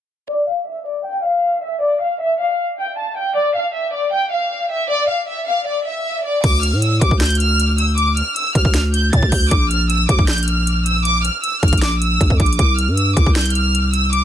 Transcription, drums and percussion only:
6.44 kick, closed hi-hat, crash
6.63 closed hi-hat
6.82 closed hi-hat
7.01 kick, closed hi-hat
7.11 kick
7.20 finger snap, snare, closed hi-hat
7.25 closed hi-hat
7.30 closed hi-hat
7.35 closed hi-hat
7.40 closed hi-hat
7.60 closed hi-hat
7.78 closed hi-hat
7.98 closed hi-hat
8.17 closed hi-hat
8.36 closed hi-hat
8.55 kick, closed hi-hat
8.65 kick
8.74 finger snap, snare, closed hi-hat
8.94 closed hi-hat
9.13 kick, closed hi-hat
9.23 kick
9.32 kick, open hi-hat
9.51 kick, closed hi-hat
9.71 closed hi-hat
9.90 closed hi-hat
10.09 kick, closed hi-hat
10.19 kick
10.27 finger snap, snare, closed hi-hat
10.33 closed hi-hat
10.38 closed hi-hat
10.43 closed hi-hat
10.48 closed hi-hat
10.67 closed hi-hat
10.86 closed hi-hat
11.05 closed hi-hat
11.25 closed hi-hat
11.44 closed hi-hat
11.63 kick, closed hi-hat
11.68 closed hi-hat
11.73 kick, closed hi-hat
11.78 finger snap, closed hi-hat
11.82 snare, closed hi-hat
12.02 closed hi-hat
12.21 kick, closed hi-hat
12.30 kick
12.40 kick, closed hi-hat, open hi-hat
12.46 closed hi-hat
12.53 closed hi-hat
12.59 kick, closed hi-hat
12.79 closed hi-hat
12.97 closed hi-hat
13.17 kick, closed hi-hat
13.26 kick
13.35 finger snap, snare, closed hi-hat
13.41 closed hi-hat
13.46 closed hi-hat
13.50 closed hi-hat
13.55 closed hi-hat
13.75 closed hi-hat
13.94 closed hi-hat
14.13 closed hi-hat

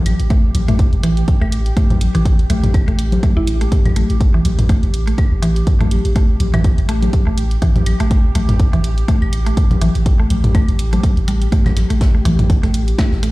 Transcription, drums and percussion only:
0.06 closed hi-hat, claves
0.20 closed hi-hat
0.30 kick, closed hi-hat
0.55 closed hi-hat, high conga
0.68 closed hi-hat, mid tom
0.79 kick, closed hi-hat
0.93 closed hi-hat
1.03 closed hi-hat
1.17 closed hi-hat
1.28 kick, closed hi-hat
1.42 claves
1.52 closed hi-hat
1.66 closed hi-hat
1.77 kick, closed hi-hat
1.90 closed hi-hat, mid tom, high conga
2.01 closed hi-hat
2.15 closed hi-hat
2.25 kick, closed hi-hat
2.39 closed hi-hat
2.50 closed hi-hat, high conga
2.64 closed hi-hat, mid tom
2.74 kick, closed hi-hat, claves
2.88 closed hi-hat
2.99 closed hi-hat
3.12 closed hi-hat, high conga
3.23 kick, closed hi-hat
3.47 closed hi-hat
3.61 closed hi-hat
3.72 kick, closed hi-hat
3.85 closed hi-hat, mid tom, high conga, claves
3.96 closed hi-hat
4.10 closed hi-hat
4.21 kick, closed hi-hat
4.45 closed hi-hat, high conga
4.59 closed hi-hat, mid tom
4.69 kick, closed hi-hat
4.83 closed hi-hat
4.94 closed hi-hat
5.07 closed hi-hat
5.18 kick, closed hi-hat, claves
5.43 closed hi-hat
5.56 closed hi-hat
5.67 kick, closed hi-hat
5.81 closed hi-hat, mid tom, high conga
5.91 closed hi-hat
6.05 closed hi-hat
6.16 kick, closed hi-hat
6.40 closed hi-hat, high conga
6.54 closed hi-hat, mid tom, claves
6.64 kick, closed hi-hat
6.78 closed hi-hat
6.89 closed hi-hat
7.03 closed hi-hat, high conga
7.13 kick, closed hi-hat
7.38 closed hi-hat
7.51 closed hi-hat
7.62 kick, closed hi-hat
7.76 closed hi-hat, mid tom, high conga
7.86 closed hi-hat, claves
8.00 closed hi-hat
8.11 kick, closed hi-hat
8.35 closed hi-hat, high conga
8.49 closed hi-hat, mid tom
8.60 kick, closed hi-hat
8.73 closed hi-hat
8.84 closed hi-hat
8.98 closed hi-hat
9.08 kick, closed hi-hat
9.22 claves
9.33 closed hi-hat
9.46 closed hi-hat
9.57 kick, closed hi-hat
9.71 closed hi-hat, mid tom, high conga
9.81 closed hi-hat
9.95 closed hi-hat
10.06 kick, closed hi-hat
10.30 closed hi-hat, high conga
10.44 closed hi-hat, mid tom
10.55 kick, closed hi-hat, claves
10.68 closed hi-hat
10.79 closed hi-hat
10.93 closed hi-hat, high conga
11.03 kick, closed hi-hat
11.17 closed hi-hat
11.28 closed hi-hat
11.42 closed hi-hat
11.52 kick, closed hi-hat
11.65 snare, closed hi-hat, mid tom, high conga, claves
11.77 snare, closed hi-hat
11.90 closed hi-hat
12.01 kick, snare, closed hi-hat
12.25 closed hi-hat, high conga
12.39 closed hi-hat, mid tom
12.50 kick, closed hi-hat
12.63 snare, closed hi-hat
12.74 closed hi-hat
12.88 closed hi-hat
12.98 kick, snare, closed hi-hat, claves
13.12 snare
13.23 snare, closed hi-hat

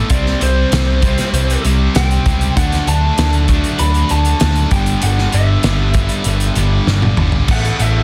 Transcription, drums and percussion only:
0.10 kick, closed hi-hat
0.26 snare
0.41 closed hi-hat
0.72 snare, closed hi-hat
1.02 kick, closed hi-hat
1.18 snare, closed hi-hat
1.34 closed hi-hat
1.50 closed hi-hat
1.65 closed hi-hat
1.95 snare, closed hi-hat
2.11 closed hi-hat
2.26 kick, closed hi-hat
2.41 closed hi-hat
2.57 kick, closed hi-hat
2.72 snare, closed hi-hat
2.87 closed hi-hat
3.18 snare, closed hi-hat
3.33 closed hi-hat
3.48 kick, closed hi-hat
3.64 closed hi-hat
3.79 closed hi-hat
3.94 closed hi-hat
4.09 closed hi-hat
4.25 closed hi-hat
4.40 snare, closed hi-hat
4.56 closed hi-hat
4.71 kick, closed hi-hat
4.86 closed hi-hat
5.02 closed hi-hat
5.18 snare
5.32 closed hi-hat
5.63 snare, closed hi-hat
5.94 kick, closed hi-hat
6.09 closed hi-hat
6.24 closed hi-hat
6.40 closed hi-hat
6.55 closed hi-hat
6.87 snare
7.02 high tom
7.17 mid tom
7.32 floor tom
7.48 kick, crash
7.65 closed hi-hat
7.79 closed hi-hat

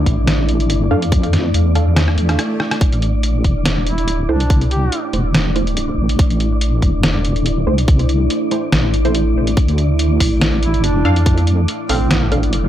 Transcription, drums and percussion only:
0.06 kick, closed hi-hat
0.27 snare, closed hi-hat
0.49 closed hi-hat
0.60 closed hi-hat
0.70 closed hi-hat
1.02 closed hi-hat
1.12 kick, closed hi-hat
1.23 closed hi-hat
1.33 snare, closed hi-hat
1.54 closed hi-hat
1.75 closed hi-hat
1.96 cross-stick, snare, closed hi-hat
2.08 cross-stick
2.18 closed hi-hat
2.29 cross-stick, closed hi-hat
2.39 cross-stick, closed hi-hat
2.60 cross-stick
2.71 cross-stick, closed hi-hat
2.81 kick, closed hi-hat
2.92 closed hi-hat
3.02 closed hi-hat
3.23 closed hi-hat
3.44 kick, closed hi-hat
3.66 snare, closed hi-hat
3.87 closed hi-hat
3.98 closed hi-hat
4.08 closed hi-hat
4.40 closed hi-hat
4.50 kick, closed hi-hat
4.61 closed hi-hat
4.71 closed hi-hat
4.92 closed hi-hat
5.13 closed hi-hat
5.35 snare, closed hi-hat
5.56 closed hi-hat
5.67 closed hi-hat
5.77 closed hi-hat
6.09 closed hi-hat
6.19 kick, closed hi-hat
6.30 closed hi-hat
6.40 closed hi-hat
6.61 closed hi-hat
6.82 kick, closed hi-hat
7.03 snare, closed hi-hat
7.25 closed hi-hat
7.36 closed hi-hat
7.46 closed hi-hat
7.78 closed hi-hat
7.88 kick, closed hi-hat
7.99 closed hi-hat
8.09 closed hi-hat
8.30 closed hi-hat
8.51 closed hi-hat
8.72 snare, closed hi-hat
8.94 closed hi-hat
9.05 closed hi-hat
9.15 closed hi-hat
9.47 closed hi-hat
9.57 kick, closed hi-hat
9.68 closed hi-hat
9.78 closed hi-hat
9.99 closed hi-hat
10.20 kick, open hi-hat
10.41 snare, closed hi-hat
10.63 closed hi-hat
10.74 closed hi-hat
10.84 closed hi-hat
11.16 closed hi-hat
11.26 kick, closed hi-hat
11.38 closed hi-hat
11.47 closed hi-hat
11.68 closed hi-hat
11.89 open hi-hat
12.11 snare, closed hi-hat
12.32 closed hi-hat
12.43 closed hi-hat
12.53 closed hi-hat

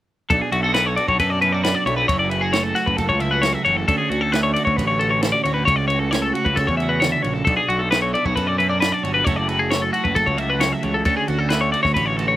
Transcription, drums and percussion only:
0.30 kick, ride
0.52 ride
0.74 snare, ride
0.97 ride
1.08 kick
1.20 kick, ride
1.42 ride
1.64 snare, ride
1.87 ride
2.09 kick, ride
2.31 ride
2.53 snare, ride
2.76 snare, ride
2.88 kick
2.98 kick, ride
3.10 kick
3.20 ride
3.43 snare, ride
3.66 ride
3.88 kick, ride
4.11 ride
4.33 snare, ride
4.56 ride
4.67 kick
4.78 kick, ride
5.01 ride
5.23 snare, ride
5.45 ride
5.68 kick, ride
5.90 ride
6.12 snare, ride
6.35 ride
6.46 kick
6.57 kick, ride
6.68 kick
6.80 ride
7.02 snare, ride
7.24 ride
7.47 kick, ride
7.70 ride
7.92 snare, ride
8.15 ride
8.26 kick
8.37 kick, ride
8.60 ride
8.82 snare, ride
9.05 ride
9.27 kick, ride
9.49 ride
9.71 snare, ride
9.94 ride
10.05 kick
10.16 kick, ride
10.27 kick
10.38 ride
10.61 snare, ride
10.83 ride
11.05 kick, ride
11.28 ride
11.50 snare, ride
11.74 ride
11.85 kick, snare
11.96 kick, ride
12.19 ride

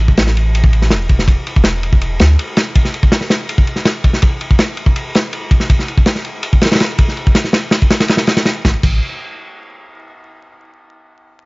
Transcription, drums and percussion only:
0.08 kick
0.17 snare, ride
0.27 snare
0.37 ride
0.55 ride
0.64 kick
0.73 ride
0.82 snare
0.90 snare, ride
1.09 kick, ride
1.19 snare
1.28 kick, ride
1.47 ride
1.56 kick
1.64 snare, ride
1.83 ride
1.93 kick
2.01 ride
2.19 snare, ride
2.39 ride
2.57 snare, ride
2.75 kick, ride
2.85 snare
2.94 ride
3.03 kick
3.12 snare, ride
3.21 snare
3.30 snare, ride
3.49 ride
3.58 kick
3.67 ride
3.76 snare
3.85 snare, ride
4.04 kick, ride
4.13 snare
4.22 kick, ride
4.41 ride
4.51 kick
4.59 snare, ride
4.77 ride
4.86 kick
4.96 ride
5.15 snare, ride
5.33 ride
5.51 kick, ride
5.60 snare
5.70 kick, ride
5.79 snare
5.88 ride
5.97 kick
6.06 snare, ride
6.15 snare
6.25 ride
6.43 ride
6.53 kick
6.62 snare, ride
6.66 snare, ride
6.72 snare, ride
6.75 snare, ride
6.80 snare, ride
6.98 kick, ride
7.08 snare
7.17 ride
7.27 kick
7.35 snare, ride
7.44 snare
7.53 snare, ride
7.71 snare, ride
7.82 kick
7.90 snare, ride
8.00 snare, ride
8.08 snare, ride
8.17 snare, ride
8.27 snare, ride
8.37 snare, ride
8.45 snare, ride
8.65 kick, snare
8.83 kick, crash

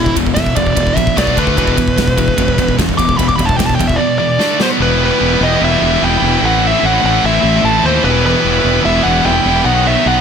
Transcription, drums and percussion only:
0.06 kick
0.16 kick, ride
0.27 kick
0.36 kick, snare, ride
0.46 kick
0.56 kick, ride
0.67 kick
0.77 kick, ride
0.87 kick
0.97 kick, ride
1.07 kick
1.17 kick, snare, ride
1.27 kick
1.37 kick, ride
1.47 kick
1.57 kick, ride
1.67 kick
1.77 kick, ride
1.88 kick
1.98 kick, snare, ride
2.08 kick
2.18 kick, ride
2.28 kick
2.38 kick, ride
2.48 kick
2.58 kick, ride
2.68 kick
2.79 kick, snare, ride
2.89 kick
2.99 kick, ride
3.09 kick
3.19 kick, ride
3.29 kick
3.39 kick, ride
3.49 kick
3.59 kick, snare, ride
3.69 kick
3.79 kick, ride
3.89 kick
4.40 snare
4.60 snare

